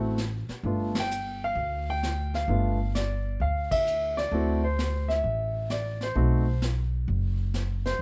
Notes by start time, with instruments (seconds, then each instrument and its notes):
Already playing: upright bass A1, grand piano A3 C4 E4 F#4
0.18 snare, hi-hat pedal
0.49 muted upright bass stroke, snare
0.63 upright bass G1, grand piano A3 B3 D4 F4, brush sweep
0.95 snare, ride
1.00 grand piano G5
1.11 hi-hat pedal
1.44 grand piano F5
1.55 upright bass D2, brush sweep
1.90 grand piano G5
2.03 snare, hi-hat pedal
2.34 grand piano F5, snare
2.48 upright bass G1, grand piano A3 B3 D4 F4, brush sweep
2.95 grand piano D5, snare, hi-hat pedal
3.40 upright bass D2, grand piano F5, brush sweep
3.71 grand piano E5, kick, ride
3.86 hi-hat pedal
4.17 grand piano D5, snare
4.32 upright bass D2, grand piano A3 C4 E4 F#4, brush sweep
4.64 grand piano C5
4.79 snare, hi-hat pedal
5.08 grand piano E5, snare
5.24 upright bass A1, brush sweep
5.70 grand piano D5, snare, hi-hat pedal
6.01 grand piano C5, snare
6.15 upright bass B1, grand piano A3 C4 D#4 F#4, brush sweep
6.62 snare, hi-hat pedal
7.08 upright bass F#1, brush sweep
7.54 snare, hi-hat pedal
7.85 grand piano C5, snare